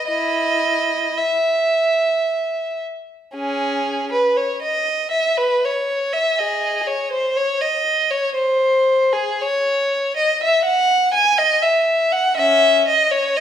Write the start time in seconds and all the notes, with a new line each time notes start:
0.07 E4 D#5
1.18 E5
3.35 C#4 G#4
4.12 B4
4.37 C#5
4.62 D#5
5.11 E5
5.38 B4
5.65 C#5
6.13 E5
6.39 G#4 D#5
6.87 C#5
7.12 C5
7.36 C#5
7.61 D#5
8.10 C#5
8.35 C5
9.13 G#4
9.41 C#5
10.16 D#5
10.43 E5
10.64 F#5
11.14 G#5
11.38 D#5
11.62 E5
12.12 F#5
12.37 C#4 E5
12.87 D#5
13.11 C#5
13.36 D#5